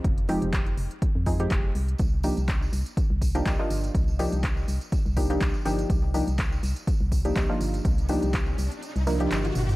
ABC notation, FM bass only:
X:1
M:4/4
L:1/16
Q:"Swing 16ths" 1/4=123
K:Cm
V:1 name="FM bass" clef=bass
F,,,3 F,,,3 F,,, z2 F,,3 F,,,2 C,,2 | C,,3 C,,3 C,, z2 C,,3 C,, z G,,,2 | C,,3 C,,3 C,, z2 C,,3 C,, z G,,,2 | C,,3 C,,3 C,, z2 C,,3 C,, z G,,,2 |
C,,3 C,,3 C,, z2 C,,3 G,,,2 G,,,2 |]